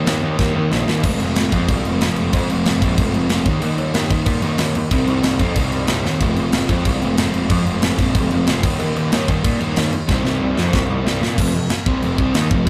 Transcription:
0.06 D#2 D#3 G3 A#3 D#4, snare, crash
0.22 D#2 D#3 G3 A#3 D#4
0.38 D#2 D#3 G3 A#3 D#4, kick, snare
0.54 D#2 D#3 G3 A#3 D#4
0.71 A#1 D#3 G3 A#3 D#4, snare
0.87 D#2 D#3 G3 A#3 D#4, snare
1.02 F1 F3 G#3 C4 F4, kick, crash
1.19 F1, crash
1.36 F1, snare, crash
1.51 F2 F3 G#3 C4 F4, kick, crash
1.68 C2, kick, crash
1.85 F1, crash
2.00 F1 F3 G#3 C4 F4, snare, crash
2.16 F1, crash
2.32 F2 F3 G#3 C4 F4, kick, crash
2.49 F1, crash
2.65 F1, snare, crash
2.81 A#1 F3 G#3 C4 F4, kick, crash
2.98 F1, kick, crash
3.13 F1, crash
3.29 F1 F3 G#3 C4 F4, snare, crash
3.45 D#2 D#3 G3 A#3 D#4, kick, crash
3.62 D#2, crash
3.78 D#2, crash
3.94 D#2 D#3 G3 A#3 D#4, snare, crash
4.10 D#3, kick, crash
4.26 A#2, kick, crash
4.42 D#2 D#3 G3 A#3 D#4, crash
4.58 D#2, snare, crash
4.75 D#2, crash
4.91 C2 C3 G3 C4 D#4, kick, crash
5.07 C2, crash
5.23 C2, snare, crash
5.39 F2 C3 G3 C4 D#4, kick, crash
5.56 C2, kick, crash
5.72 C2, crash
5.87 C2 C3 G3 C4 D#4, snare, crash
6.04 D#2, snare
6.20 F1 F3 G#3 C4 F4, kick, crash
6.36 F1, crash
6.52 F1, snare, crash
6.68 F2 F3 G#3 C4 F4, kick, crash
6.85 C2, kick, crash
7.01 F1, crash
7.17 F1 F3 G#3 C4 F4, snare, crash
7.34 F1, crash
7.49 F2 F3 G#3 C4 F4, kick, crash
7.66 F1, crash
7.82 F1, snare, crash
7.98 A#1 F3 G#3 C4 F4, kick, crash
8.15 F1, kick, crash
8.31 F1, crash
8.46 F1 F3 G#3 C4 F4, snare, crash
8.63 D#2 D#3 G3 A#3 D#4, kick, crash
8.80 D#2, crash
8.96 D#2, crash
9.12 D#2 D#3 G3 A#3 D#4, snare, crash
9.28 D#3, kick, crash
9.44 A#2, kick, crash
9.60 D#2 D#3 G3 A#3 D#4, crash
9.76 D#2, snare, crash
9.93 D#2, crash
10.08 C2 C3 G3 C4 D#4, kick, snare
10.24 C2, snare
10.41 C2
10.56 F2 C3 G3 C4 D#4, snare
10.73 C2, kick, snare
10.90 C2
11.04 C2 C3 G3 C4 D#4, snare
11.21 A#2, snare
11.38 F1 F2 C3 F3, kick, crash
11.54 F1 F2 C3
11.69 muted overdriven electric guitar stroke, muted picked electric bass stroke, snare, crash
11.86 C2 C3 G3 C4, kick
12.02 F1 F2 C3 F3, crash
12.18 C2 C3 G3 C4, kick
12.34 D#2 D#3 A#3 D#4, snare, crash
12.51 F1 F2 C3 F3, kick
12.66 G#1

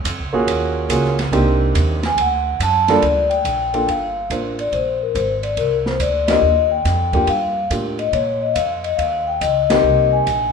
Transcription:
0.04 F2, kick, hi-hat pedal, ride
0.19 C#2
0.33 A#1 A#3 C#4 F4 F#4 G#4
0.47 D#2, kick, ride
0.89 C#2 A#3 C#4 F4 F#4 G#4, kick, hi-hat pedal, ride
1.04 snare
1.19 snare, ride
1.31 C2 A#3 C4 D4 D#4 G4, kick, ride
1.75 D#2, kick, hi-hat pedal, ride
2.03 G#5, snare, ride
2.17 D2, kick, ride
2.21 F#5
2.59 F#2 A5, kick, hi-hat pedal, ride
2.88 G3 A#3 D4 F4 A4 D5, snare, ride
3.02 D2, kick, ride
3.30 G5, ride
3.44 A#1, kick, hi-hat pedal, ride
3.74 A#3 D4 F4 A4 G5, ride
3.87 G1 F5, kick, ride
4.30 A1 A#3 D4 F4 C5, kick, hi-hat pedal, ride
4.59 D5, ride
4.72 A#1 C5, kick, ride
5.02 A#4
5.15 G#1 C5, kick, hi-hat pedal, ride
5.43 D5, ride
5.57 C2 A#4, kick, ride
5.86 C5, snare
6.00 D2 D5, kick, hi-hat pedal, ride
6.27 A#3 D4 F4 G4 D#5, snare, ride
6.42 D#2
6.71 G5
6.85 F2, kick, snare, hi-hat pedal, ride
7.13 A#3 D4 F4 G4 G5, kick, ride
7.27 G2 F5, kick, ride
7.71 A2 A#3 D4 F4 G4, kick, hi-hat pedal, ride
7.99 D#5, ride
8.13 A#2 C#5, kick, ride
8.41 D#5
8.54 F2 F5, kick, hi-hat pedal, ride
8.83 D#5, ride
8.97 D#2 F5, kick, ride
9.27 G5
9.41 C#2 D#5, kick, hi-hat pedal, ride
9.67 A#3 C4 D#5, snare, ride
9.71 D#4 G4
9.83 C2
10.13 G#5
10.27 A#1, kick, hi-hat pedal, ride

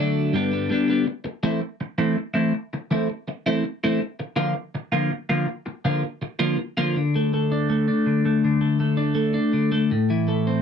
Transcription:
Already playing: D3 F#3 A3
0.00 D4
0.33 G2 D3 G3 B3 D4
0.51 G3 B3 D4
0.69 D3 G3 B3 D4
0.88 G3 B3 D4
1.07 muted clean electric guitar stroke
1.24 muted clean electric guitar stroke
1.43 E3 A3 C4 E4
1.61 muted clean electric guitar stroke
1.81 muted clean electric guitar stroke
1.98 E3 A3 C4 E4
2.17 muted clean electric guitar stroke
2.34 E3 A3 C4 E4
2.54 muted clean electric guitar stroke
2.73 muted clean electric guitar stroke
2.91 E3 A3 C4 E4
3.10 muted clean electric guitar stroke
3.28 muted clean electric guitar stroke
3.46 E3 A3 C4 E4
3.64 muted clean electric guitar stroke
3.84 E3 A3 C4 E4
4.01 muted clean electric guitar stroke
4.20 muted clean electric guitar stroke
4.36 D3 F3 A#3 F4
4.55 muted clean electric guitar stroke
4.75 muted clean electric guitar stroke
4.92 D3 F3 A#3 F4
5.12 muted clean electric guitar stroke
5.29 D3 F3 A#3 F4
5.47 muted clean electric guitar stroke
5.66 muted clean electric guitar stroke
5.85 D3 F3 A#3 F4
6.04 muted clean electric guitar stroke
6.22 muted clean electric guitar stroke
6.39 D3 F3 A#3 F4
6.58 muted clean electric guitar stroke
6.77 D3 F3 A#3 F4
6.96 D3
7.16 A3
7.34 A3
7.52 D4
7.70 A3
7.88 D4
8.06 D3
8.25 A3
8.44 D3
8.61 A3
8.80 A3
8.97 D4
9.15 A3
9.34 D4
9.53 D3
9.72 A3
9.91 A2
10.10 E3
10.28 A3
10.47 C4

